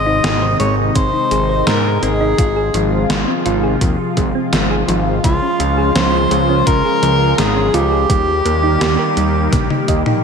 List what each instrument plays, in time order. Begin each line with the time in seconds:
Already playing: analog synth bass G#1, analog synth pad C3 D#3 G#3 D#4, tenor saxophone D#5
0.06 synth arpeggio sound D#4
0.24 analog synth bass G#1, synth arpeggio sound G#4, snare, closed hi-hat
0.42 synth arpeggio sound C5
0.60 analog synth bass G#1, synth arpeggio sound G#3, tenor saxophone C#5, closed hi-hat
0.95 analog synth bass G#1, synth arpeggio sound C4, tenor saxophone C5, kick, closed hi-hat
1.13 synth arpeggio sound D#4
1.31 analog synth bass G#1, synth arpeggio sound G#4, closed hi-hat
1.49 synth arpeggio sound C5
1.67 analog synth bass G#2, synth arpeggio sound G#3, tenor saxophone A#4, snare, closed hi-hat
2.03 analog synth bass G#1, synth arpeggio sound C4, tenor saxophone G#4, closed hi-hat
2.21 synth arpeggio sound D#4
2.38 analog synth bass G#1, analog synth pad C3 F3 F4, synth arpeggio sound F4, kick, closed hi-hat
2.56 synth arpeggio sound G#4
2.74 analog synth bass G#1, synth arpeggio sound F3, closed hi-hat
3.10 analog synth bass G#1, synth arpeggio sound G#3, snare, closed hi-hat
3.28 synth arpeggio sound C4
3.45 analog synth bass G#1, synth arpeggio sound F4, closed hi-hat
3.63 synth arpeggio sound G#4
3.81 analog synth bass D#2, synth arpeggio sound F3, kick, closed hi-hat
4.17 analog synth bass G#1, synth arpeggio sound G#3, kick, closed hi-hat
4.35 synth arpeggio sound C4
4.53 analog synth bass G#1, synth arpeggio sound F4, snare, closed hi-hat
4.71 synth arpeggio sound G#4
4.88 analog synth bass G#1, synth arpeggio sound F3, closed hi-hat
5.24 analog synth bass C#2, analog synth pad C#3 G#3, synth arpeggio sound G#3, tenor saxophone F4, kick, closed hi-hat
5.42 synth arpeggio sound C#4
5.60 analog synth bass C#2, synth arpeggio sound F4, closed hi-hat
5.78 synth arpeggio sound G#4
5.95 analog synth bass C#2, synth arpeggio sound F3, tenor saxophone C5, snare, closed hi-hat
6.31 analog synth bass C#2, synth arpeggio sound G#3, closed hi-hat
6.49 synth arpeggio sound C#4
6.67 analog synth bass C#2, synth arpeggio sound F4, tenor saxophone A#4, kick, closed hi-hat
6.85 synth arpeggio sound G#4
7.03 analog synth bass C#2, synth arpeggio sound F3, closed hi-hat
7.38 analog synth bass G#1, synth arpeggio sound G#3, tenor saxophone G#4, snare, closed hi-hat
7.56 synth arpeggio sound C#4
7.74 analog synth bass C#2, synth arpeggio sound F4, tenor saxophone G4, closed hi-hat
7.92 synth arpeggio sound G#4
8.10 analog synth bass D#2, analog synth pad D#3 G3 A#3 G4, synth arpeggio sound G3, kick, closed hi-hat
8.45 analog synth bass D#2, synth arpeggio sound A#3, closed hi-hat
8.63 synth arpeggio sound D#4
8.81 analog synth bass D#2, synth arpeggio sound G4, snare, closed hi-hat
8.99 synth arpeggio sound A#4
9.17 analog synth bass D#2, synth arpeggio sound G3, closed hi-hat
9.52 analog synth bass A#1, synth arpeggio sound A#3, kick, snare, closed hi-hat, high tom
9.70 synth arpeggio sound D#4, high tom
9.88 analog synth bass D#2, synth arpeggio sound D#5, kick, closed hi-hat
10.06 synth arpeggio sound D#4, mid tom